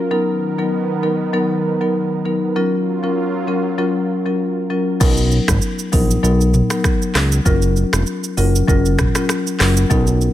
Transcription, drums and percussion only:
5.01 kick, crash, shaker
5.17 shaker
5.31 shaker
5.48 finger snap, kick, cross-stick, shaker
5.62 shaker
5.79 shaker
5.93 kick, open hi-hat, shaker
6.11 shaker
6.24 shaker
6.41 shaker
6.54 mid tom, shaker
6.70 finger snap, cross-stick, shaker
6.84 finger snap, kick, cross-stick, shaker
7.02 shaker
7.15 finger snap, cross-stick, clap, open hi-hat, shaker
7.32 shaker
7.46 kick, shaker
7.62 shaker
7.76 shaker
7.93 finger snap, cross-stick, shaker
8.06 shaker
8.24 shaker
8.38 open hi-hat, shaker
8.55 shaker
8.68 kick, shaker
8.85 shaker
8.99 finger snap, kick, cross-stick, mid tom, shaker
9.15 finger snap, cross-stick, shaker
9.29 finger snap, cross-stick, shaker
9.47 shaker
9.60 finger snap, cross-stick, clap, open hi-hat, shaker
9.77 shaker
9.91 kick, shaker
10.07 shaker
10.21 shaker

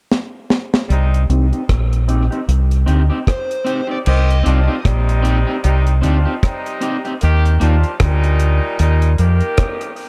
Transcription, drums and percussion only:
0.12 snare
0.50 snare
0.74 snare
0.90 closed hi-hat
1.14 closed hi-hat
1.30 closed hi-hat
1.53 closed hi-hat
1.69 kick, cross-stick, closed hi-hat
1.93 closed hi-hat
2.09 closed hi-hat
2.32 closed hi-hat
2.49 closed hi-hat
2.71 closed hi-hat
2.88 closed hi-hat
3.27 kick, cross-stick, closed hi-hat
3.51 closed hi-hat
3.66 closed hi-hat
4.06 crash
4.30 closed hi-hat
4.46 closed hi-hat
4.85 kick, cross-stick, closed hi-hat
5.09 closed hi-hat
5.25 closed hi-hat
5.64 closed hi-hat
5.87 closed hi-hat
6.03 closed hi-hat
6.43 kick, cross-stick, closed hi-hat
6.66 closed hi-hat
6.81 closed hi-hat
7.05 closed hi-hat
7.21 closed hi-hat
7.45 closed hi-hat
7.61 closed hi-hat
7.84 closed hi-hat
8.00 kick, cross-stick, closed hi-hat
8.24 closed hi-hat
8.39 closed hi-hat
8.79 closed hi-hat
9.02 closed hi-hat
9.18 closed hi-hat
9.40 closed hi-hat
9.57 kick, cross-stick, closed hi-hat
9.81 closed hi-hat
9.96 open hi-hat

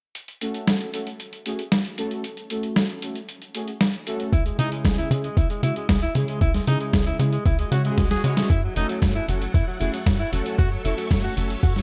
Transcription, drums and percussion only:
0.15 closed hi-hat
0.28 closed hi-hat
0.41 closed hi-hat
0.54 closed hi-hat
0.67 snare, closed hi-hat
0.81 closed hi-hat
0.94 closed hi-hat
1.07 closed hi-hat
1.20 closed hi-hat
1.33 closed hi-hat
1.46 closed hi-hat
1.59 closed hi-hat
1.72 snare, closed hi-hat
1.85 closed hi-hat
1.98 closed hi-hat
2.11 closed hi-hat
2.24 closed hi-hat
2.37 closed hi-hat
2.50 closed hi-hat
2.63 closed hi-hat
2.76 snare, closed hi-hat
2.89 closed hi-hat
3.02 closed hi-hat
3.15 closed hi-hat
3.29 closed hi-hat
3.42 closed hi-hat
3.55 closed hi-hat
3.68 closed hi-hat
3.81 snare, closed hi-hat
3.94 closed hi-hat
4.07 closed hi-hat
4.20 closed hi-hat
4.33 kick, closed hi-hat
4.46 closed hi-hat
4.59 closed hi-hat
4.72 closed hi-hat
4.85 kick, snare, closed hi-hat
4.98 closed hi-hat
5.11 closed hi-hat
5.24 closed hi-hat
5.37 kick, closed hi-hat
5.50 closed hi-hat
5.63 closed hi-hat
5.76 closed hi-hat
5.89 kick, snare, closed hi-hat
6.02 closed hi-hat
6.15 closed hi-hat
6.28 closed hi-hat
6.41 kick, closed hi-hat
6.54 snare, closed hi-hat
6.67 closed hi-hat
6.80 closed hi-hat
6.93 kick, snare, closed hi-hat
7.07 closed hi-hat
7.20 closed hi-hat
7.33 closed hi-hat
7.46 kick, closed hi-hat
7.59 closed hi-hat
7.72 closed hi-hat
7.85 closed hi-hat
7.98 kick, snare, closed hi-hat
8.11 snare, closed hi-hat
8.24 closed hi-hat
8.37 snare, closed hi-hat
8.50 kick, closed hi-hat
8.76 closed hi-hat
8.89 closed hi-hat
9.02 kick, snare, closed hi-hat
9.29 closed hi-hat
9.42 closed hi-hat
9.54 kick, closed hi-hat
9.81 closed hi-hat
9.94 closed hi-hat
10.06 kick, snare, closed hi-hat
10.33 closed hi-hat
10.46 closed hi-hat
10.59 kick, closed hi-hat
10.85 closed hi-hat
10.98 closed hi-hat
11.11 kick, snare, closed hi-hat
11.37 closed hi-hat
11.50 closed hi-hat
11.63 kick, closed hi-hat
11.76 snare

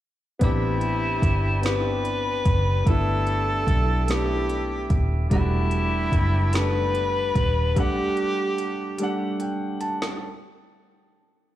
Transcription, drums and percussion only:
0.41 kick, closed hi-hat
0.81 closed hi-hat
1.22 kick, closed hi-hat
1.63 snare, closed hi-hat
2.05 closed hi-hat
2.45 kick, closed hi-hat
2.86 kick, closed hi-hat
3.27 closed hi-hat
3.67 kick, closed hi-hat
4.08 snare, closed hi-hat
4.49 closed hi-hat
4.90 kick, closed hi-hat
5.31 kick, closed hi-hat
5.71 closed hi-hat
6.12 kick, closed hi-hat
6.53 snare, closed hi-hat
6.95 closed hi-hat
7.35 kick, closed hi-hat
7.76 kick, closed hi-hat
8.17 closed hi-hat
8.58 closed hi-hat
8.98 closed hi-hat
9.40 closed hi-hat
9.81 closed hi-hat
10.02 snare

